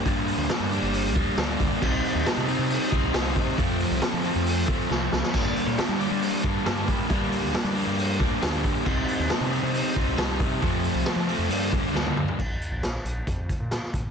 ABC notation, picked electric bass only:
X:1
M:4/4
L:1/16
Q:1/4=136
K:Gm
V:1 name="Picked electric bass" clef=bass
G,,3 D,, z G,,2 G,,,3 D,, z D,,2 D,, z | C,,2 z E,, z C,2 C,2 z C,,2 C,,2 C,2 | F,,3 C,, z F,2 F,,3 C,, z C,,2 C,, z | G,,2 z B,, z G,2 G,2 z G,,2 G,,2 G,2 |
G,3 D,, z G,2 G,,3 D,, z D,,2 G,, z | C,,2 z E,, z C,2 C,2 z C,,2 C,,2 C,2 | F,,3 C,, z F,2 F,, G,,2 D,, z D,,2 D,, z | B,,,2 z B,,,3 B,,,2 F,,3 B,,2 z A,,, z |]